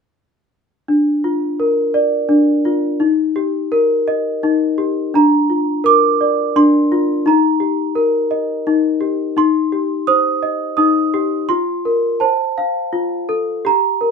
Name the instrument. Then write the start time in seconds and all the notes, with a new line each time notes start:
celesta
0.88 D4
1.24 F4
1.60 A#4
1.94 D5
2.29 D4
2.65 F4
3.00 D#4
3.36 G4
3.72 A#4
4.08 D#5
4.43 D#4
4.78 G4
5.14 D4 A#5
5.50 F4
5.84 A#4 D6
6.21 D5
6.56 D4 C6
6.92 F4
7.26 D#4 A#5
7.60 G4
7.95 A#4
8.31 D#5
8.67 D#4
9.01 G4
9.37 D#4 C6
9.72 G4
10.07 C5 D#6
10.43 D#5
10.77 D#4 D#6
11.14 G4
11.49 F4 C6
11.85 A#4
12.20 C5 A5
12.58 F5
12.93 F4
13.29 A4
13.65 G4 A#5
14.01 A#4